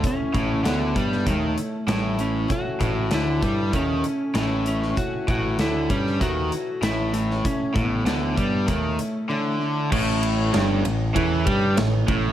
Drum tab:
CC |----------------|----------------|----------------|----------------|
RD |----------------|----------------|----------------|----------------|
HH |x-x-x-x-x-x-x-x-|x-x-x-x-x-x-x-x-|x-x-x-x-x-x-x-x-|x-x-x-x-x-x-----|
SD |----o--o----o---|----o-------o--o|----o--o----o--o|----o-----------|
BD |o-o---o-o-------|o-o---o-o-------|o-o---o-o-------|o-o---o-o-------|

CC |x---------------|
RD |--x-x-x-x-x-x-x-|
HH |----------------|
SD |----o-------o---|
BD |o-------o-o---o-|